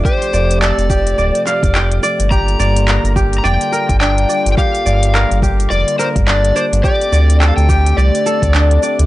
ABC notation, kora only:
X:1
M:4/4
L:1/16
Q:"Swing 16ths" 1/4=106
K:Gm
V:1 name="Kora"
G z d2 A z G2 d z f z g2 d z | G z d2 B z G2 d z B2 D z d2 | G z d2 B z G2 d z B2 D z d2 | G z d2 A z G2 d z A2 D z d2 |]